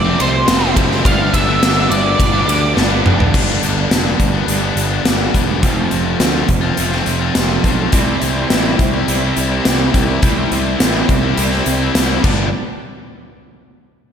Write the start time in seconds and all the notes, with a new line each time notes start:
Already playing: F1 F2 C3 A3 C4 F4 C5 D5
0.05 F3 A3 C4
0.19 C2 C3 F3 A3 C4 C5, ride
0.34 muted distorted electric guitar stroke
0.46 F1 F2 C3 F3 A3 C4, snare, ride
0.61 F3 A3 C4
0.75 F#1 C3 F3 A3 C4, kick, ride
0.89 F3 A3 C4, snare
1.04 G1 G2 D3 G3 B3 D4 G4 D5 F5, kick, ride
1.32 G1 D3 G3 B3 D4 E5, kick, ride
1.46 G3 B3 D4
1.61 G1 G2 D3 G3 B3 D4, snare, ride
1.75 G3 B3 D4
1.90 G1 D3 G3 B3 D4 D5, muted overdriven electric guitar stroke, ride
2.04 G3 B3 D4, muted distorted electric guitar stroke
2.18 G1 G2 D3 G3 B3 D4, kick, ride
2.33 G3 B3 D4
2.47 D2 D3 G3 B3 D4, ride
2.62 muted distorted electric guitar stroke
2.74 G1 G2 D3 G3 B3 D4, snare
2.90 G3 B3 D4
3.03 F1 D3 G3 B3 D4, mid tom
3.19 G3 B3 D4, floor tom
3.32 G1 G2 D3 G3 B3 D4, kick, crash
3.61 G1 D3 G3 B3 D4, closed hi-hat
3.90 F1 G2 D3 G3 B3 D4, snare, closed hi-hat
4.04 G3 B3 D4
4.19 G1, muted distorted electric guitar stroke, kick, closed hi-hat
4.32 G3 B3 D4
4.48 G1 G2 D3 G3, closed hi-hat
4.61 G3 B3 D4
4.76 G1, closed hi-hat
4.90 G3 B3 D4
5.03 G1 G2 D3 G3 B3 D4, snare, closed hi-hat
5.18 G3 B3 D4
5.32 E1 D3 G3 B3 D4, kick, closed hi-hat
5.47 G3 B3 D4
5.61 F1 F2 C3 F3 A3 C4 F4, kick, closed hi-hat
5.90 F1 F3 A3 C4 F4, closed hi-hat
6.20 D2 F3 A3 C4 F4, snare, closed hi-hat
6.34 A3 C4 F4
6.48 F1, muted distorted electric guitar stroke, kick, closed hi-hat
6.61 A3 C4 F4
6.77 F1 F2 C3 F3, closed hi-hat
6.91 A3 C4 F4, snare
7.06 F1, closed hi-hat
7.19 A3 C4 F4
7.33 F1 F3 A3 C4 F4, snare, closed hi-hat
7.48 A3 C4 F4
7.62 B1 F3 A3 B3 C4 F4, kick, closed hi-hat
7.68 C4 D4
7.73 E4 F4
7.79 A3 C4 G4 A4
7.84 B4 C5
7.90 C2 C3 E3 G3 C4 E4 G4 D5 E5, kick, closed hi-hat
7.94 C4 E4
8.21 C2 E3 G3 C4 E4, closed hi-hat
8.50 A1 C3 E3 G3 C4 E4, snare, closed hi-hat
8.64 G3 C4 E4
8.79 C2, muted distorted electric guitar stroke, kick, closed hi-hat
8.93 G3 C4 E4
9.08 C2 C3 G3 C4, closed hi-hat
9.21 G3 C4 E4
9.37 C2, closed hi-hat
9.49 G3 C4 E4
9.64 C2 C3 E3 G3 C4 E4, snare, closed hi-hat
9.79 G3 C4 E4
9.94 C2 E3 G3 C4 E4, kick, closed hi-hat
10.08 G3 C4 E4
10.22 C2 C3 E3 G3 C4 E4 G4 C5 E5, kick, closed hi-hat
10.50 C2 E3 G3 C4 E4, closed hi-hat
10.79 A1 C3 E3 G3 C4 E4, snare, closed hi-hat
10.94 G3 C4 E4
11.08 C2, muted distorted electric guitar stroke, kick, closed hi-hat
11.22 G3 C4 E4
11.37 C2 C3 G3 C4, closed hi-hat
11.50 G3 C4 E4, snare
11.66 C2, closed hi-hat
11.80 G3 C4 E4
11.94 C2 C3 E3 G3 C4 E4, snare, closed hi-hat
12.09 G3 C4 E4
12.23 G1 G2 D3 G3 B3 D4 G4 D5, kick, crash